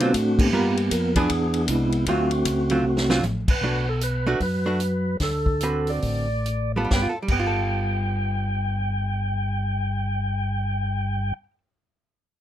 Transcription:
0.00 0.13 B2 medium
0.00 0.13 D3 medium
0.00 0.13 F#3 medium
0.00 0.51 A3 medium
0.00 0.13 C4 medium
0.00 0.51 C4 medium
0.00 0.51 D4 medium
0.00 0.13 F4 medium
0.00 0.41 F#4 medium
0.00 0.12 C5 medium
0.00 ride medium
0.14 0.52 A2 loud
0.14 kick soft
0.14 hi-hat pedal soft
0.14 ride medium
0.39 1.13 A#3 medium
0.39 1.13 B3 medium
0.39 0.94 G4 loud
0.39 kick medium
0.39 crash medium
0.52 0.90 G2 medium
0.52 0.75 G3 medium
0.52 0.75 B3 medium
0.52 0.75 F4 medium
0.52 0.76 A#4 medium
0.77 ride soft
0.91 1.29 F2 loud
0.91 1.15 A#4 medium
0.91 kick soft
0.91 hi-hat pedal medium
0.91 ride medium
1.16 1.29 E3 medium
1.16 1.29 B3 medium
1.16 1.69 B3 medium
1.16 1.29 D4 medium
1.16 1.90 D4 medium
1.16 1.29 G#4 medium
1.16 1.66 G#4 medium
1.16 kick medium
1.16 ride medium
1.30 1.67 E2 medium
1.30 kick soft
1.30 ride medium
1.54 ride soft
1.68 2.06 C2 loud
1.68 2.05 G#3 medium
1.68 2.05 B3 medium
1.68 2.05 E4 medium
1.68 kick soft
1.68 hi-hat pedal soft
1.68 ride medium
1.92 ride soft
2.06 2.44 D2 medium
2.06 2.30 D3 medium
2.06 2.30 F#3 medium
2.06 3.20 A3 medium
2.06 2.30 C4 medium
2.06 3.20 C4 medium
2.06 2.30 F4 medium
2.06 3.20 F#4 medium
2.06 kick soft
2.06 ride medium
2.31 ride soft
2.45 2.83 C#2 medium
2.45 kick soft
2.45 hi-hat pedal medium
2.45 ride medium
2.70 2.83 D3 medium
2.70 2.83 F#3 medium
2.70 2.84 C4 medium
2.70 2.84 F4 medium
2.70 ride soft
2.83 3.21 C2 medium
2.97 snare medium
3.10 3.22 D3 medium
3.10 3.22 F#3 medium
3.10 3.22 C4 medium
3.10 3.23 F4 medium
3.10 snare medium
3.23 3.46 A1 loud
3.23 hi-hat pedal soft
3.23 high tom medium
3.48 3.55 A1 soft
3.48 3.89 B4 medium
3.48 kick medium
3.48 crash medium
3.61 4.36 B1 medium
3.61 3.85 A3 medium
3.61 3.85 D4 medium
3.61 3.85 F#4 medium
3.89 4.02 A4 medium
4.01 4.41 B4 medium
4.01 closed hi-hat medium
4.27 4.39 A3 medium
4.27 4.39 D4 medium
4.27 4.40 F#4 medium
4.40 5.16 F#2 medium
4.40 5.17 B4 medium
4.40 kick soft
4.40 open hi-hat soft
4.66 4.78 A3 medium
4.66 4.79 D4 medium
4.66 4.79 F#4 medium
4.80 closed hi-hat soft
5.20 5.99 D2 medium
5.20 5.91 A4 medium
5.20 kick soft
5.20 snare soft
5.20 open hi-hat soft
5.46 kick medium
5.60 6.26 D3 soft
5.60 6.26 C4 medium
5.60 6.26 F#4 medium
5.60 6.27 B4 medium
5.60 closed hi-hat medium
5.87 6.72 D5 medium
5.87 open hi-hat soft
6.02 6.87 A1 medium
6.02 kick soft
6.02 open hi-hat soft
6.46 closed hi-hat medium
6.76 6.83 G3 medium
6.76 6.91 B3 medium
6.76 6.91 F4 medium
6.76 6.91 A4 medium
6.85 7.05 G3 medium
6.91 7.07 G1 medium
6.91 7.09 G5 medium
6.91 kick medium
6.91 snare medium
6.95 7.11 B3 medium
7.02 7.14 F4 medium
7.09 7.18 A4 medium
7.23 11.34 G3 medium
7.28 11.32 G1 medium
7.28 11.43 B3 medium
7.28 11.34 G5 medium
7.28 kick medium
7.28 crash medium
7.39 11.51 F4 medium
7.47 11.58 A4 medium

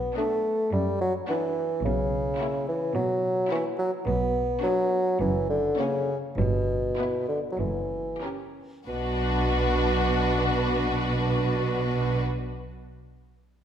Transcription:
0.00 0.17 B3 medium
0.17 0.72 A3 medium
0.17 0.59 B3 soft
0.17 0.59 D4 soft
0.17 0.59 F#4 soft
0.72 1.18 F#2 medium
0.72 1.00 G3 soft
1.01 1.13 F#3 medium
1.29 1.84 E3 medium
1.29 1.70 B3 soft
1.29 1.70 D4 soft
1.29 1.70 F#4 soft
1.84 2.28 B1 soft
1.84 2.28 B2 soft
1.84 2.66 C#3 soft
2.39 2.81 A#3 soft
2.39 2.80 E4 soft
2.39 2.81 F#4 soft
2.68 2.95 E3 medium
2.95 3.39 B2 soft
2.95 3.50 F#3 medium
3.50 3.64 E3 medium
3.50 3.92 A#3 soft
3.50 3.92 E4 soft
3.50 3.92 F#4 medium
3.79 3.91 F#3 medium
4.06 4.51 B1 medium
4.06 4.51 B2 medium
4.06 4.62 B3 medium
4.63 5.19 F#3 medium
4.63 5.06 B3 soft
4.63 5.05 D4 soft
4.63 5.06 F#4 soft
5.20 5.67 F#1 soft
5.20 5.66 F#2 soft
5.20 5.49 E3 medium
5.50 5.78 D3 medium
5.78 6.16 C#3 medium
5.78 6.22 A#3 soft
5.78 6.22 C#4 medium
5.78 6.23 F#4 soft
6.37 6.86 G1 medium
6.37 6.85 G2 medium
6.37 7.24 B2 medium
6.98 7.44 B3 soft
6.98 7.44 E4 soft
6.98 7.44 B4 soft
7.28 7.39 D3 medium
7.52 7.61 F#3 soft
7.59 8.10 F#1 soft
7.59 8.09 F#2 soft
7.59 8.23 E3 soft
8.22 8.71 C#4 soft
8.22 8.72 G4 soft
8.22 8.72 A#4 soft
8.88 12.21 B1 soft
8.88 12.21 B2 soft
8.88 12.21 D4 soft
8.88 12.21 F#4 soft
8.88 12.21 B4 soft

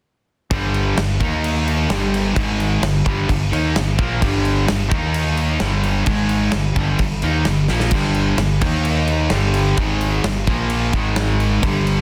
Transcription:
0.51 0.94 G1 medium
0.51 0.97 G2 loud
0.51 0.97 D3 loud
0.51 0.97 G3 loud
0.51 kick loud
0.51 crash medium
0.74 crash medium
0.97 1.19 G1 medium
0.97 1.16 G2 medium
0.97 1.16 D3 medium
0.97 snare loud
0.97 crash medium
1.20 1.86 D#2 medium
1.20 1.89 D#3 loud
1.20 1.89 A#3 loud
1.20 1.90 D#4 loud
1.20 kick loud
1.20 crash medium
1.44 crash medium
1.68 crash medium
1.90 2.33 G1 medium
1.90 2.36 G2 medium
1.90 2.36 D3 loud
1.90 2.36 G3 loud
1.90 snare loud
1.90 crash medium
2.14 crash medium
2.36 2.79 G#1 loud
2.36 2.82 G#2 medium
2.36 2.82 D#3 loud
2.36 2.82 G#3 loud
2.36 kick loud
2.36 crash medium
2.60 crash medium
2.82 3.04 G1 medium
2.82 3.01 G2 medium
2.82 3.01 D3 medium
2.82 snare loud
2.82 crash medium
3.05 3.27 G1 loud
3.05 3.28 G2 medium
3.05 3.28 D3 loud
3.05 3.28 G3 loud
3.05 kick loud
3.05 crash medium
3.29 3.51 G1 medium
3.29 3.48 G2 medium
3.29 3.48 D3 medium
3.29 kick loud
3.29 crash medium
3.52 3.74 D#2 loud
3.52 3.75 D#3 medium
3.52 3.75 A#3 loud
3.52 3.75 D#4 loud
3.52 crash medium
3.75 3.97 G1 medium
3.75 3.94 G2 medium
3.75 3.94 D3 medium
3.75 snare loud
3.75 crash medium
3.98 4.20 A#1 medium
3.98 4.21 A#2 medium
3.98 4.21 F3 loud
3.98 4.21 A#3 loud
3.98 kick loud
3.98 crash medium
4.21 4.65 G1 medium
4.21 4.67 G2 loud
4.21 4.67 D3 loud
4.21 4.68 G3 loud
4.21 kick loud
4.21 crash medium
4.45 crash medium
4.68 4.87 G2 medium
4.68 4.87 D3 medium
4.68 snare loud
4.68 crash medium
4.91 5.57 D#2 medium
4.91 5.60 D#3 medium
4.91 5.60 A#3 loud
4.91 5.61 D#4 loud
4.91 kick loud
4.91 crash medium
5.14 crash medium
5.37 crash medium
5.60 6.04 G1 medium
5.60 6.07 G2 medium
5.60 6.07 D3 medium
5.60 6.07 G3 loud
5.60 snare loud
5.60 crash medium
5.83 crash medium
6.06 6.50 G#1 loud
6.06 6.53 G#2 medium
6.06 6.53 D#3 loud
6.06 6.54 G#3 loud
6.06 kick loud
6.06 crash medium
6.29 crash medium
6.52 6.75 G1 medium
6.52 6.73 G2 medium
6.52 6.73 D3 medium
6.52 snare loud
6.52 crash medium
6.76 6.98 G1 loud
6.76 6.98 G2 medium
6.76 6.99 D3 loud
6.76 7.00 G3 loud
6.76 kick loud
6.76 crash medium
6.99 7.21 G1 medium
6.99 7.19 G2 medium
6.99 7.19 D3 medium
6.99 kick loud
6.99 crash medium
7.22 7.44 D#2 loud
7.22 7.46 D#3 medium
7.22 7.46 A#3 loud
7.22 7.46 D#4 loud
7.22 crash medium
7.45 7.68 G1 medium
7.45 7.65 G2 medium
7.45 7.65 D3 medium
7.45 snare loud
7.45 crash medium
7.68 7.90 A#1 medium
7.68 7.92 A#2 medium
7.68 7.92 F3 loud
7.68 7.93 A#3 medium
7.68 snare medium
7.80 snare medium
7.91 8.35 G1 medium
7.91 8.38 G2 medium
7.91 8.39 D3 loud
7.91 8.39 G3 loud
7.91 kick loud
7.91 crash loud
7.91 crash medium
8.14 crash medium
8.37 8.60 G1 medium
8.37 8.58 G2 medium
8.37 8.58 D3 medium
8.37 snare loud
8.37 crash medium
8.61 9.27 D#2 loud
8.61 9.31 D#3 medium
8.61 9.31 A#3 medium
8.61 9.31 D#4 loud
8.61 kick loud
8.61 crash loud
8.85 crash medium
9.07 crash medium
9.30 9.74 G1 medium
9.30 9.77 G2 loud
9.30 9.78 D3 loud
9.30 9.77 G3 loud
9.30 snare loud
9.30 crash medium
9.54 crash medium
9.77 10.21 G#1 medium
9.77 10.24 G#2 loud
9.77 10.24 D#3 loud
9.77 10.24 G#3 loud
9.77 kick loud
9.77 crash medium
10.01 crash medium
10.24 10.46 G1 medium
10.24 10.43 G2 medium
10.24 10.44 D3 medium
10.24 snare loud
10.24 crash medium
10.47 10.90 A#1 loud
10.47 10.93 A#2 loud
10.47 10.93 F3 loud
10.47 10.93 A#3 loud
10.47 kick loud
10.47 crash medium
10.70 crash medium
10.93 11.59 G#1 loud
10.93 11.62 G#2 medium
10.93 11.63 D#3 medium
10.93 11.63 G#3 loud
10.93 kick loud
10.93 crash medium
11.16 snare loud
11.16 crash medium
11.40 crash medium
11.62 12.01 G1 loud
11.62 12.01 G2 loud
11.62 12.01 D3 loud
11.62 12.01 G3 loud
11.62 kick loud
11.62 crash medium
11.87 crash medium

